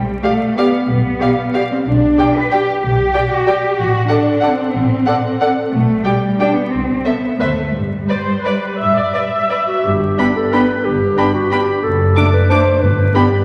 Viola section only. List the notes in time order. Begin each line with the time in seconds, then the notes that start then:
0.24 G4
0.58 G4
1.21 G4
1.55 G4
2.18 G4
2.51 G4
3.14 G4
3.47 G4
4.10 A4
4.43 A4
5.07 A4
5.41 A4
6.05 G4
6.40 G4
7.04 A4
7.40 B4
8.09 C5
8.45 B4
8.79 E5
8.96 D5
9.14 E5
9.68 E5
10.19 D4
10.53 D4
11.18 D4
11.52 D4
12.16 D4
12.50 D4
13.15 D4